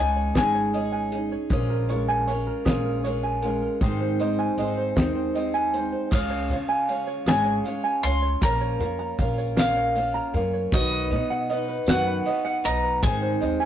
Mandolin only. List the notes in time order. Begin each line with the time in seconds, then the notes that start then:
Already playing: G#5
0.37 G#5
6.13 F5
7.28 G#5
8.03 C6
8.43 A#5
9.59 F5
10.73 D#5
11.89 F#5
12.65 A#5
13.03 G#5